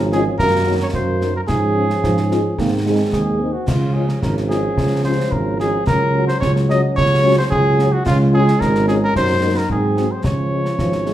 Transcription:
0.00 0.29 G#1 medium
0.00 0.34 F3 medium
0.00 0.34 C#4 medium
0.10 0.20 G#3 medium
0.10 0.20 C#4 medium
0.10 0.20 F4 medium
0.10 0.24 G#4 medium
0.10 snare medium
0.38 0.84 F#2 medium
0.38 1.32 D#3 medium
0.38 1.32 A#3 medium
0.38 0.77 A#4 loud
0.38 concert bass drum medium
0.38 snare medium
0.65 0.75 F#3 medium
0.65 0.76 A#3 medium
0.65 0.76 D#4 medium
0.82 0.88 C#5 medium
0.93 1.39 F#2 medium
0.93 1.32 C5 medium
0.93 concert bass drum medium
1.21 1.31 F#3 medium
1.21 1.31 A#3 medium
1.21 1.31 D#4 medium
1.21 snare medium
1.36 1.42 A#4 medium
1.47 1.94 G#2 medium
1.47 2.54 F3 medium
1.47 2.58 C#4 medium
1.47 2.80 G#4 medium
1.47 concert bass drum medium
1.47 snare medium
1.75 1.85 F3 soft
1.75 1.85 C#4 soft
1.75 1.85 F4 soft
1.90 snare soft
2.02 2.48 G#2 medium
2.02 2.15 F3 medium
2.02 concert bass drum medium
2.02 snare medium
2.17 snare soft
2.29 2.40 F3 soft
2.29 2.42 G#3 medium
2.29 2.39 C#4 medium
2.29 2.39 F4 soft
2.29 snare medium
2.57 3.03 G#2 medium
2.57 3.39 D#3 medium
2.57 2.70 A#3 medium
2.57 3.36 C4 soft
2.57 concert bass drum medium
2.57 snare medium
2.85 2.95 G#3 soft
2.85 3.41 G#3 medium
2.85 2.95 C4 soft
2.85 2.95 D#4 soft
3.11 3.53 D#2 medium
3.11 3.54 G#4 medium
3.11 concert bass drum medium
3.11 snare medium
3.40 3.50 G#3 soft
3.40 3.67 C4 medium
3.40 3.50 C4 soft
3.40 3.50 D#4 soft
3.53 3.69 F#4 medium
3.67 4.13 C#2 medium
3.67 5.82 F3 medium
3.67 5.82 C#4 medium
3.67 3.95 F4 medium
3.67 concert bass drum medium
3.67 snare medium
3.67 crash soft
3.94 4.04 G#3 soft
3.94 4.04 C#4 soft
3.94 4.04 F4 soft
3.94 4.21 G#4 medium
4.09 snare soft
4.22 4.67 G#1 medium
4.22 4.35 A#4 medium
4.22 concert bass drum medium
4.22 snare medium
4.37 snare soft
4.49 4.59 G#3 medium
4.49 4.59 C#4 medium
4.49 4.59 F4 soft
4.49 5.00 G#4 medium
4.49 snare medium
4.76 5.22 C#2 medium
4.76 concert bass drum medium
4.76 snare medium
5.04 5.14 G#3 medium
5.04 5.14 C#4 medium
5.04 5.15 F4 medium
5.04 5.33 C5 medium
5.32 5.77 G#1 medium
5.32 5.59 A#4 medium
5.32 concert bass drum medium
5.59 5.69 G#3 medium
5.59 5.69 C#4 medium
5.59 5.69 F4 medium
5.59 5.85 G#4 medium
5.59 snare medium
5.85 6.32 C#2 medium
5.85 8.05 F#3 medium
5.85 8.01 C#4 medium
5.85 6.25 A#4 medium
5.85 concert bass drum medium
5.85 snare medium
6.14 6.24 F#3 medium
6.14 6.24 C#4 medium
6.14 6.24 F#4 medium
6.27 6.40 C5 medium
6.27 snare medium
6.40 6.86 C#2 medium
6.40 6.53 C#5 medium
6.40 concert bass drum medium
6.40 snare medium
6.56 snare medium
6.68 6.78 F#3 medium
6.68 6.78 C#4 medium
6.68 6.78 F#4 medium
6.68 6.82 D#5 medium
6.68 snare medium
6.95 7.41 C#2 medium
6.95 7.34 C#5 loud
6.95 concert bass drum medium
6.95 snare medium
7.22 7.32 F#3 medium
7.22 7.33 C#4 medium
7.22 7.32 F#4 medium
7.38 7.44 C5 loud
7.50 7.96 C#2 medium
7.50 7.94 G#4 loud
7.50 concert bass drum medium
7.78 7.88 F#3 medium
7.78 7.88 C#4 medium
7.78 7.87 F#4 medium
7.78 snare medium
7.92 8.05 F#4 medium
8.05 8.51 C#2 medium
8.05 9.11 G#3 medium
8.05 9.11 C#4 medium
8.05 8.18 F4 loud
8.05 concert bass drum medium
8.05 snare medium
8.05 crash soft
8.32 8.42 G#3 medium
8.32 8.42 C#4 medium
8.32 8.42 F4 medium
8.32 8.62 G#4 medium
8.48 snare medium
8.59 9.05 G#1 medium
8.59 8.88 A#4 medium
8.59 concert bass drum medium
8.59 snare medium
8.75 snare medium
8.87 8.97 G#3 medium
8.87 8.97 C#4 medium
8.87 8.97 F4 medium
8.87 8.94 G#4 medium
8.87 snare medium
9.04 9.15 A#4 medium
9.14 9.60 F#2 medium
9.14 10.24 F#3 medium
9.14 9.70 D#4 medium
9.14 9.59 C5 loud
9.14 concert bass drum medium
9.14 snare medium
9.41 9.51 A#3 medium
9.41 9.52 D#4 medium
9.41 9.52 F#4 medium
9.57 9.70 A#4 medium
9.69 10.09 G#2 medium
9.69 10.24 C4 medium
9.69 10.13 G#4 medium
9.69 concert bass drum medium
9.97 10.07 G#3 soft
9.97 10.06 C4 soft
9.97 10.06 F#4 soft
9.97 snare medium
10.11 10.24 C5 medium
10.23 10.69 C#2 soft
10.23 11.14 F3 medium
10.23 11.14 C#4 medium
10.23 11.14 C#5 medium
10.23 concert bass drum medium
10.23 snare medium
10.51 10.61 G#3 soft
10.51 10.61 C#4 soft
10.51 10.60 F4 soft
10.65 snare soft
10.78 11.14 G#1 soft
10.78 10.91 F3 soft
10.78 concert bass drum medium
10.78 snare medium
10.92 snare soft
11.05 11.14 G#3 soft
11.05 11.14 C#4 soft
11.05 11.14 F4 soft
11.05 snare soft

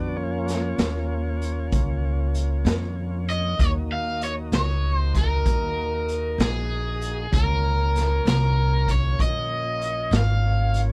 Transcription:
0.00 0.77 F2 medium
0.00 0.17 B3 medium
0.00 0.17 D4 medium
0.00 0.17 F#4 medium
0.00 0.17 D5 medium
0.16 3.55 A#3 medium
0.16 3.55 C#4 medium
0.16 3.55 F4 medium
0.16 3.55 C#5 medium
0.48 snare soft
0.48 closed hi-hat medium
0.78 1.69 D#2 medium
0.78 snare medium
0.78 closed hi-hat medium
1.42 closed hi-hat medium
1.72 2.63 C#2 medium
1.72 kick medium
1.72 closed hi-hat medium
2.34 closed hi-hat medium
2.65 3.56 F2 medium
2.65 snare medium
2.65 closed hi-hat medium
3.28 3.61 D#5 medium
3.28 closed hi-hat medium
3.57 4.50 D#2 medium
3.57 7.27 A#3 medium
3.57 7.27 D#4 medium
3.57 7.27 F#4 medium
3.57 7.27 D#5 medium
3.57 kick medium
3.57 closed hi-hat medium
3.61 3.70 C#5 medium
3.92 4.23 F5 medium
4.21 4.32 C#5 medium
4.21 closed hi-hat medium
4.52 5.43 C#2 medium
4.52 4.96 C#5 medium
4.52 snare medium
4.52 closed hi-hat medium
4.96 5.12 C5 medium
5.15 6.41 A#4 medium
5.15 kick medium
5.15 snare soft
5.15 closed hi-hat medium
5.46 6.36 D#2 medium
5.46 kick loud
5.46 closed hi-hat medium
6.08 closed hi-hat medium
6.38 7.29 A#1 medium
6.38 7.34 G#4 medium
6.38 snare loud
6.38 closed hi-hat medium
7.01 closed hi-hat medium
7.31 8.23 C#2 medium
7.31 10.92 A#3 medium
7.31 10.92 C#4 medium
7.31 10.92 F4 medium
7.31 8.27 A#4 medium
7.31 10.92 C#5 medium
7.31 kick loud
7.31 closed hi-hat medium
7.95 snare soft
7.95 closed hi-hat medium
8.25 9.16 C2 medium
8.25 8.91 A#4 medium
8.25 snare medium
8.25 closed hi-hat medium
8.88 9.21 C#5 medium
8.88 kick medium
8.88 closed hi-hat medium
9.19 10.09 A#1 medium
9.19 10.16 D#5 medium
9.19 kick medium
9.19 closed hi-hat medium
9.81 closed hi-hat medium
10.11 10.92 G#1 medium
10.11 snare medium
10.11 closed hi-hat medium
10.16 10.80 F5 medium
10.74 closed hi-hat medium

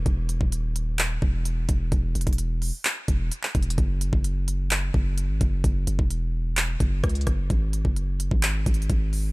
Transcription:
0.06 0.39 E1 loud
0.06 kick loud
0.06 closed hi-hat medium
0.29 closed hi-hat medium
0.41 1.19 D#1 loud
0.41 kick medium
0.52 closed hi-hat medium
0.76 closed hi-hat medium
0.99 clap loud
0.99 closed hi-hat medium
1.22 1.67 E1 loud
1.22 kick loud
1.45 closed hi-hat medium
1.69 1.91 E1 loud
1.69 kick loud
1.69 closed hi-hat medium
1.92 2.14 E1 loud
1.92 kick loud
1.92 closed hi-hat medium
2.15 2.26 E1 loud
2.15 closed hi-hat medium
2.21 closed hi-hat medium
2.27 2.71 E1 loud
2.27 kick medium
2.27 closed hi-hat medium
2.33 closed hi-hat medium
2.38 closed hi-hat medium
2.62 open hi-hat medium
2.85 clap loud
2.85 closed hi-hat medium
3.08 3.31 E1 loud
3.08 kick loud
3.08 closed hi-hat medium
3.32 closed hi-hat medium
3.43 clap medium
3.55 3.77 E1 loud
3.55 kick medium
3.55 closed hi-hat soft
3.63 closed hi-hat medium
3.70 closed hi-hat medium
3.78 4.12 F#1 loud
3.78 kick loud
3.78 closed hi-hat medium
4.01 closed hi-hat medium
4.13 4.91 F#1 loud
4.13 kick medium
4.24 closed hi-hat medium
4.48 closed hi-hat medium
4.71 clap loud
4.71 closed hi-hat medium
4.94 5.31 F#1 loud
4.94 kick loud
5.18 closed hi-hat medium
5.29 5.40 G#1 loud
5.41 5.63 F#1 loud
5.41 kick loud
5.41 closed hi-hat medium
5.64 5.86 F#1 loud
5.64 kick loud
5.64 closed hi-hat medium
5.87 5.98 F#1 loud
5.87 closed hi-hat medium
5.99 6.77 E1 loud
5.99 kick medium
6.11 closed hi-hat medium
6.57 clap loud
6.57 closed hi-hat medium
6.80 7.03 F#1 loud
6.80 kick loud
6.80 closed hi-hat medium
7.04 7.26 C#2 loud
7.04 kick loud
7.04 cross-stick loud
7.04 closed hi-hat medium
7.09 closed hi-hat medium
7.15 closed hi-hat medium
7.21 closed hi-hat medium
7.27 7.49 F#1 loud
7.27 kick medium
7.27 cross-stick medium
7.27 closed hi-hat medium
7.50 7.84 G#1 loud
7.50 kick loud
7.50 closed hi-hat medium
7.73 closed hi-hat medium
7.85 8.30 F#1 loud
7.85 kick medium
7.96 closed hi-hat medium
8.20 closed hi-hat medium
8.31 8.65 G#1 loud
8.31 kick medium
8.43 clap loud
8.43 closed hi-hat medium
8.66 8.89 G#1 loud
8.66 kick loud
8.66 closed hi-hat medium
8.74 closed hi-hat medium
8.82 closed hi-hat soft
8.90 9.32 G#1 loud
8.90 kick loud
8.90 closed hi-hat medium
9.13 open hi-hat medium

